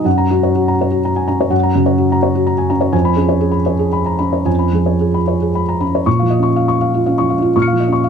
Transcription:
0.05 F#2 F#5
0.18 A#5
0.31 C#4 F#4
0.43 C#5
0.55 F#4
0.68 A#5
0.81 C#5
0.91 F#4
1.05 A#5
1.16 G#5
1.28 C#4 A#5
1.40 C#5
1.50 F#2 F#5
1.63 A#5
1.75 C#3 F#4
1.86 C#5
1.98 F#4
2.12 A#5
2.23 C#5
2.35 F#4
2.47 A#5
2.58 G#5
2.70 C#4 A#5
2.81 C#5
2.93 F2 G#5
3.05 B5
3.16 C#4 G#4
3.29 C#5
3.40 G#4
3.52 B5
3.66 C#5
3.79 G#4
3.93 B5
4.06 A#5
4.19 C#4 B5
4.33 C#5
4.45 F2 G#5
4.59 B5
4.73 F3 G#4
4.86 C#5
5.01 G#4
5.14 B5
5.28 C#5
5.42 G#4
5.55 B5
5.69 A#5
5.80 C#4 B5
5.95 C#5
6.06 A#2 C#6
6.19 F3 F5
6.30 D#5
6.39 C#4 C#6
6.56 F5
6.68 C#6
6.81 F5
6.94 F4
7.06 C#4 F5
7.18 F3 C#6
7.30 F5
7.39 C#4 F4
7.56 A#2 C#6 F6
7.62 C#7
7.68 F5
7.73 F3
7.80 D#5
7.88 C#4
7.93 C#6
8.04 F5

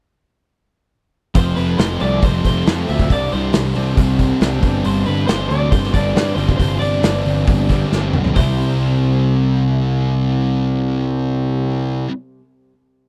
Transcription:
1.35 F1 F2 C3 F3 A3 C4 C5, kick, open hi-hat
1.56 F1 A4 B4, open hi-hat
1.78 F1 F4 C5, snare, open hi-hat
2.00 C2 F2 C3 F3 G3 A3 C4 D5, open hi-hat
2.22 F1 C4 C5, kick, open hi-hat
2.45 F1 F4 C5, kick, open hi-hat
2.65 F2 C3 F3 A3 C4 A4, snare, open hi-hat
2.87 D2 F4 E5, open hi-hat
2.99 kick
3.09 C2 C3 G3 C4 D4 D5, kick, open hi-hat
3.32 C2 D4 C5, open hi-hat
3.53 C2 C4, snare, open hi-hat
3.74 C2 C3 G3 C4 D4, open hi-hat
3.97 C2 G3, kick, open hi-hat
4.19 C4, kick, open hi-hat
4.41 C2 C3 G3 C4 D4, snare, open hi-hat
4.61 G1 G2 D3 G3 C4 D4, kick, open hi-hat
4.84 G1 G2 C5, open hi-hat
5.06 G1 D4 B4, open hi-hat
5.27 G1 G2 D3 G3 C4 D4 C5, snare, open hi-hat
5.49 D2 D3 D5, open hi-hat
5.71 G1 G3 C5, kick, open hi-hat
5.84 snare
5.92 G1 G2 D3 G3 C4 D4 D5, kick, open hi-hat
6.15 G2 D4, snare, open hi-hat
6.35 G1 G2 D3 G3 C4 C5, open hi-hat
6.39 C4 D4
6.49 kick
6.57 G1 G2 C5, kick, open hi-hat
6.79 G1 D4 D5, open hi-hat
7.02 G1 G2 D3 G3 C4 D4, snare, open hi-hat
7.25 G1 D3, open hi-hat
7.47 G1 G3, kick, open hi-hat
7.68 G2 D3 G3 C4 D4, kick, open hi-hat
7.92 G1 D4, snare
8.13 B1 C4, mid tom
8.24 floor tom
8.34 C2 C3 G3 C4 C5, kick, floor tom, open hi-hat
8.38 C4 E4

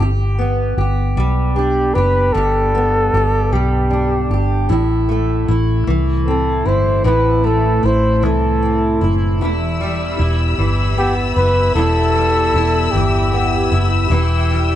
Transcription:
0.00 G1 G4
0.39 B3
0.77 G1 G4
1.17 B1 G3
1.56 D4 G4
1.94 F#1 G4 B4
2.33 G1 G2 G4 A4
2.75 B3
3.13 G1 G4
3.52 B1 G3 G4
3.91 D4
4.30 G1 G4
4.69 A1 A2 E4
5.09 A3
5.48 A1 E4
5.87 C2 E3
6.28 C4 A4
6.65 G1 E4 C5
7.04 A1 A2 E4 B4
7.44 A3 A4
7.83 A1 E4 C5
8.23 C2 E3 A4
8.62 C4
9.01 F#1 E4
9.41 E1 E2 E4 G4 E5 B5 E6
9.81 G3
10.19 E1 E4
10.58 G1 E3
10.98 B3 G4
11.36 F#1 E4 B4
11.75 E1 E2 E4 A4
12.15 G3
12.54 E1 E4
12.91 G1 E3 G4
13.33 B3
13.72 F#1 E4
14.10 E1 E3 E4 G5
14.51 G3

